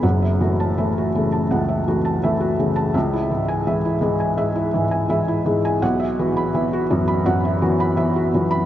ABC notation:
X:1
M:4/4
L:1/16
Q:1/4=83
K:F#dor
V:1 name="Felt piano"
f e F a e F C, a f e F a e F C, a | e E G,, g e E G,, g e E G,, g e E G,, g | f e F b e F F,, b f e F b e F F,, b |]
V:2 name="Felt piano" clef=bass
[F,,,F,,]2 [E,A,]2 [E,A,]2 [E,A,]2 C,,2 [E,A,]2 [E,A,]2 [E,A,]2 | C,,2 [E,G,]2 [E,G,]2 [E,G,]2 G,,2 [E,G,]2 [E,G,]2 [E,G,]2 | B,,,2 [E,B,]2 [E,B,]2 [E,B,]2 F,,2 [E,B,]2 [E,B,]2 [E,B,]2 |]